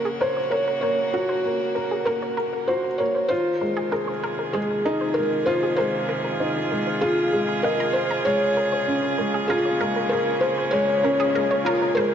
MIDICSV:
0, 0, Header, 1, 6, 480
1, 0, Start_track
1, 0, Tempo, 618557
1, 650, Time_signature, 4, 2, 24, 8
1, 9423, End_track
2, 0, Start_track
2, 0, Title_t, "Felt piano"
2, 0, Program_c, 0, 0
2, 0, Note_on_c, 0, 70, 91
2, 166, Note_on_c, 0, 72, 94
2, 182, Note_off_c, 0, 70, 0
2, 393, Note_on_c, 0, 73, 90
2, 415, Note_off_c, 0, 72, 0
2, 616, Note_off_c, 0, 73, 0
2, 628, Note_on_c, 0, 73, 91
2, 1594, Note_on_c, 0, 70, 91
2, 1628, Note_off_c, 0, 73, 0
2, 2076, Note_on_c, 0, 72, 97
2, 2097, Note_off_c, 0, 70, 0
2, 2313, Note_on_c, 0, 73, 89
2, 2331, Note_off_c, 0, 72, 0
2, 2549, Note_on_c, 0, 72, 104
2, 2569, Note_off_c, 0, 73, 0
2, 3517, Note_on_c, 0, 68, 92
2, 3549, Note_off_c, 0, 72, 0
2, 3988, Note_on_c, 0, 70, 94
2, 4018, Note_off_c, 0, 68, 0
2, 4235, Note_on_c, 0, 72, 94
2, 4247, Note_off_c, 0, 70, 0
2, 4461, Note_off_c, 0, 72, 0
2, 4473, Note_on_c, 0, 72, 96
2, 5442, Note_on_c, 0, 68, 88
2, 5471, Note_off_c, 0, 72, 0
2, 5921, Note_on_c, 0, 70, 91
2, 5940, Note_off_c, 0, 68, 0
2, 6155, Note_on_c, 0, 72, 88
2, 6173, Note_off_c, 0, 70, 0
2, 6401, Note_on_c, 0, 73, 98
2, 6410, Note_off_c, 0, 72, 0
2, 7354, Note_on_c, 0, 68, 91
2, 7395, Note_off_c, 0, 73, 0
2, 7832, Note_on_c, 0, 70, 89
2, 7857, Note_off_c, 0, 68, 0
2, 8064, Note_off_c, 0, 70, 0
2, 8076, Note_on_c, 0, 72, 86
2, 8310, Note_on_c, 0, 73, 102
2, 8330, Note_off_c, 0, 72, 0
2, 9271, Note_on_c, 0, 70, 90
2, 9309, Note_off_c, 0, 73, 0
2, 9423, Note_off_c, 0, 70, 0
2, 9423, End_track
3, 0, Start_track
3, 0, Title_t, "Synth arpeggio sound"
3, 0, Program_c, 1, 84
3, 40, Note_on_c, 1, 68, 95
3, 125, Note_off_c, 1, 68, 0
3, 163, Note_on_c, 1, 70, 90
3, 246, Note_off_c, 1, 70, 0
3, 285, Note_on_c, 1, 73, 68
3, 335, Note_off_c, 1, 73, 0
3, 400, Note_on_c, 1, 70, 89
3, 485, Note_off_c, 1, 70, 0
3, 526, Note_on_c, 1, 70, 73
3, 576, Note_off_c, 1, 70, 0
3, 643, Note_on_c, 1, 72, 74
3, 726, Note_off_c, 1, 72, 0
3, 881, Note_on_c, 1, 70, 73
3, 933, Note_off_c, 1, 70, 0
3, 1001, Note_on_c, 1, 72, 75
3, 1085, Note_off_c, 1, 72, 0
3, 1359, Note_on_c, 1, 70, 65
3, 1412, Note_off_c, 1, 70, 0
3, 1484, Note_on_c, 1, 68, 80
3, 1567, Note_off_c, 1, 68, 0
3, 1602, Note_on_c, 1, 70, 100
3, 1686, Note_off_c, 1, 70, 0
3, 1725, Note_on_c, 1, 73, 70
3, 1775, Note_off_c, 1, 73, 0
3, 1841, Note_on_c, 1, 70, 92
3, 1925, Note_off_c, 1, 70, 0
3, 1964, Note_on_c, 1, 70, 71
3, 2015, Note_off_c, 1, 70, 0
3, 2086, Note_on_c, 1, 72, 76
3, 2167, Note_off_c, 1, 72, 0
3, 2326, Note_on_c, 1, 70, 70
3, 2376, Note_off_c, 1, 70, 0
3, 2444, Note_on_c, 1, 72, 72
3, 2526, Note_off_c, 1, 72, 0
3, 2804, Note_on_c, 1, 70, 73
3, 2855, Note_off_c, 1, 70, 0
3, 2922, Note_on_c, 1, 68, 95
3, 3006, Note_off_c, 1, 68, 0
3, 3043, Note_on_c, 1, 70, 101
3, 3126, Note_off_c, 1, 70, 0
3, 3162, Note_on_c, 1, 72, 75
3, 3214, Note_off_c, 1, 72, 0
3, 3286, Note_on_c, 1, 70, 94
3, 3368, Note_off_c, 1, 70, 0
3, 3405, Note_on_c, 1, 70, 61
3, 3455, Note_off_c, 1, 70, 0
3, 3529, Note_on_c, 1, 72, 80
3, 3609, Note_off_c, 1, 72, 0
3, 3765, Note_on_c, 1, 70, 74
3, 3815, Note_off_c, 1, 70, 0
3, 3887, Note_on_c, 1, 72, 75
3, 3968, Note_off_c, 1, 72, 0
3, 4248, Note_on_c, 1, 70, 75
3, 4297, Note_off_c, 1, 70, 0
3, 4368, Note_on_c, 1, 68, 93
3, 4449, Note_off_c, 1, 68, 0
3, 4485, Note_on_c, 1, 70, 97
3, 4567, Note_off_c, 1, 70, 0
3, 4602, Note_on_c, 1, 72, 70
3, 4654, Note_off_c, 1, 72, 0
3, 4725, Note_on_c, 1, 70, 99
3, 4807, Note_off_c, 1, 70, 0
3, 4845, Note_on_c, 1, 70, 75
3, 4896, Note_off_c, 1, 70, 0
3, 4969, Note_on_c, 1, 72, 83
3, 5049, Note_off_c, 1, 72, 0
3, 5211, Note_on_c, 1, 70, 72
3, 5258, Note_off_c, 1, 70, 0
3, 5330, Note_on_c, 1, 72, 67
3, 5410, Note_off_c, 1, 72, 0
3, 5689, Note_on_c, 1, 68, 74
3, 5769, Note_off_c, 1, 68, 0
3, 5809, Note_on_c, 1, 82, 74
3, 5857, Note_off_c, 1, 82, 0
3, 5931, Note_on_c, 1, 77, 97
3, 5978, Note_off_c, 1, 77, 0
3, 6054, Note_on_c, 1, 82, 101
3, 6131, Note_off_c, 1, 82, 0
3, 6173, Note_on_c, 1, 70, 71
3, 6219, Note_off_c, 1, 70, 0
3, 6290, Note_on_c, 1, 82, 96
3, 6404, Note_off_c, 1, 82, 0
3, 6409, Note_on_c, 1, 72, 78
3, 6489, Note_off_c, 1, 72, 0
3, 6650, Note_on_c, 1, 70, 75
3, 6698, Note_off_c, 1, 70, 0
3, 6769, Note_on_c, 1, 72, 76
3, 6849, Note_off_c, 1, 72, 0
3, 7126, Note_on_c, 1, 70, 68
3, 7176, Note_off_c, 1, 70, 0
3, 7249, Note_on_c, 1, 68, 90
3, 7329, Note_off_c, 1, 68, 0
3, 7371, Note_on_c, 1, 70, 100
3, 7450, Note_off_c, 1, 70, 0
3, 7491, Note_on_c, 1, 73, 70
3, 7538, Note_off_c, 1, 73, 0
3, 7609, Note_on_c, 1, 70, 98
3, 7689, Note_off_c, 1, 70, 0
3, 7731, Note_on_c, 1, 70, 74
3, 7778, Note_off_c, 1, 70, 0
3, 7848, Note_on_c, 1, 72, 78
3, 7929, Note_off_c, 1, 72, 0
3, 8090, Note_on_c, 1, 70, 73
3, 8138, Note_off_c, 1, 70, 0
3, 8208, Note_on_c, 1, 72, 73
3, 8289, Note_off_c, 1, 72, 0
3, 8570, Note_on_c, 1, 70, 79
3, 8618, Note_off_c, 1, 70, 0
3, 8689, Note_on_c, 1, 68, 98
3, 8769, Note_off_c, 1, 68, 0
3, 8811, Note_on_c, 1, 70, 94
3, 8890, Note_off_c, 1, 70, 0
3, 8929, Note_on_c, 1, 73, 81
3, 8977, Note_off_c, 1, 73, 0
3, 9049, Note_on_c, 1, 70, 101
3, 9129, Note_off_c, 1, 70, 0
3, 9172, Note_on_c, 1, 70, 63
3, 9219, Note_off_c, 1, 70, 0
3, 9288, Note_on_c, 1, 72, 82
3, 9369, Note_off_c, 1, 72, 0
3, 9423, End_track
4, 0, Start_track
4, 0, Title_t, "String quartet"
4, 0, Program_c, 2, 48
4, 0, Note_on_c, 2, 49, 62
4, 0, Note_on_c, 2, 58, 64
4, 0, Note_on_c, 2, 66, 65
4, 0, Note_on_c, 2, 70, 80
4, 2563, Note_off_c, 2, 66, 0
4, 2567, Note_on_c, 2, 51, 65
4, 2569, Note_off_c, 2, 49, 0
4, 2885, Note_on_c, 2, 65, 77
4, 2944, Note_on_c, 2, 48, 83
4, 3133, Note_on_c, 2, 68, 87
4, 3510, Note_off_c, 2, 70, 0
4, 4098, Note_off_c, 2, 58, 0
4, 6406, Note_on_c, 2, 49, 83
4, 6409, Note_off_c, 2, 51, 0
4, 6766, Note_on_c, 2, 58, 73
4, 7898, Note_off_c, 2, 48, 0
4, 9423, Note_off_c, 2, 49, 0
4, 9423, Note_off_c, 2, 58, 0
4, 9423, Note_off_c, 2, 65, 0
4, 9423, Note_off_c, 2, 68, 0
4, 9423, End_track
5, 0, Start_track
5, 0, Title_t, "Upright piano"
5, 0, Program_c, 3, 0
5, 0, Control_c, 3, 64, 127
5, 0, Note_on_c, 3, 58, 71
5, 0, Note_on_c, 3, 66, 62
5, 0, Note_on_c, 3, 70, 86
5, 153, Note_off_c, 3, 58, 0
5, 160, Note_on_c, 3, 73, 65
5, 302, Note_off_c, 3, 73, 0
5, 641, Note_on_c, 3, 58, 81
5, 873, Note_off_c, 3, 58, 0
5, 881, Note_off_c, 3, 66, 0
5, 881, Note_on_c, 3, 66, 89
5, 1022, Note_off_c, 3, 66, 0
5, 1124, Note_on_c, 3, 58, 70
5, 1355, Note_off_c, 3, 58, 0
5, 1363, Note_off_c, 3, 70, 0
5, 1363, Note_on_c, 3, 70, 81
5, 1595, Note_off_c, 3, 70, 0
5, 1602, Note_on_c, 3, 58, 75
5, 1834, Note_off_c, 3, 58, 0
5, 2087, Note_on_c, 3, 66, 69
5, 2225, Note_off_c, 3, 66, 0
5, 2326, Note_on_c, 3, 58, 70
5, 2556, Note_off_c, 3, 58, 0
5, 2562, Note_on_c, 3, 65, 88
5, 2580, Control_c, 3, 64, 0
5, 2721, Control_c, 3, 64, 127
5, 2794, Note_off_c, 3, 65, 0
5, 2800, Note_on_c, 3, 56, 68
5, 3033, Note_off_c, 3, 56, 0
5, 3039, Note_on_c, 3, 68, 69
5, 3181, Note_off_c, 3, 68, 0
5, 3524, Note_on_c, 3, 56, 86
5, 3755, Note_off_c, 3, 56, 0
5, 3769, Note_on_c, 3, 63, 105
5, 3906, Note_off_c, 3, 63, 0
5, 4009, Note_on_c, 3, 56, 66
5, 4237, Note_off_c, 3, 56, 0
5, 4243, Note_on_c, 3, 65, 103
5, 4474, Note_off_c, 3, 65, 0
5, 4486, Note_on_c, 3, 56, 74
5, 4716, Note_off_c, 3, 56, 0
5, 4969, Note_on_c, 3, 63, 67
5, 5106, Note_off_c, 3, 63, 0
5, 5208, Note_on_c, 3, 56, 65
5, 5437, Note_off_c, 3, 56, 0
5, 5445, Note_on_c, 3, 65, 94
5, 5676, Note_off_c, 3, 65, 0
5, 5687, Note_on_c, 3, 56, 74
5, 5825, Note_off_c, 3, 56, 0
5, 5930, Note_on_c, 3, 75, 67
5, 6158, Note_off_c, 3, 75, 0
5, 6403, Note_on_c, 3, 56, 76
5, 6420, Control_c, 3, 64, 0
5, 6577, Control_c, 3, 64, 127
5, 6635, Note_off_c, 3, 56, 0
5, 6883, Note_on_c, 3, 61, 71
5, 7024, Note_off_c, 3, 61, 0
5, 7127, Note_on_c, 3, 56, 69
5, 7357, Note_off_c, 3, 56, 0
5, 7367, Note_on_c, 3, 65, 94
5, 7597, Note_off_c, 3, 65, 0
5, 7609, Note_on_c, 3, 56, 76
5, 7838, Note_off_c, 3, 56, 0
5, 7850, Note_on_c, 3, 68, 72
5, 7987, Note_off_c, 3, 68, 0
5, 8324, Note_on_c, 3, 56, 97
5, 8555, Note_off_c, 3, 56, 0
5, 8563, Note_on_c, 3, 61, 93
5, 8703, Note_off_c, 3, 61, 0
5, 8806, Note_on_c, 3, 56, 73
5, 9036, Note_off_c, 3, 56, 0
5, 9040, Note_on_c, 3, 65, 90
5, 9273, Note_off_c, 3, 65, 0
5, 9281, Note_on_c, 3, 56, 80
5, 9423, Note_off_c, 3, 56, 0
5, 9423, End_track
6, 0, Start_track
6, 0, Title_t, "Sub bass"
6, 0, Program_c, 4, 38
6, 0, Note_on_c, 4, 30, 87
6, 2542, Note_off_c, 4, 30, 0
6, 2562, Note_on_c, 4, 29, 91
6, 6382, Note_off_c, 4, 29, 0
6, 6402, Note_on_c, 4, 37, 86
6, 9423, Note_off_c, 4, 37, 0
6, 9423, End_track
0, 0, End_of_file